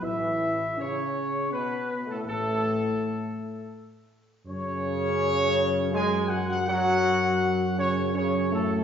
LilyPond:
<<
  \new Staff \with { instrumentName = "Trumpet section" } { \time 3/4 \key a \major \tempo 4 = 81 e''4 cis''4 b'8. a'16 | a'2 r4 | cis''2 gis''8 fis''16 fis''16 | fis''4. cis''8 cis''8 a'8 | }
  \new Staff \with { instrumentName = "French horn section" } { \time 3/4 \key a \major e'4 cis'4 b8. a16 | a2 r4 | cis'2 gis'8 fis'16 fis'16 | fis'4. cis'8 cis'8 a8 | }
  \new Staff \with { instrumentName = "Trombone section" } { \clef bass \time 3/4 \key a \major e4 cis4 b,8. a,16 | a,2 r4 | cis2 gis8 fis16 fis16 | fis4. cis8 cis8 a,8 | }
  \new Staff \with { instrumentName = "Tuba" } { \clef bass \time 3/4 \key a \major a,,4 r2 | a,,4 r2 | fis,2.~ | fis,2. | }
>>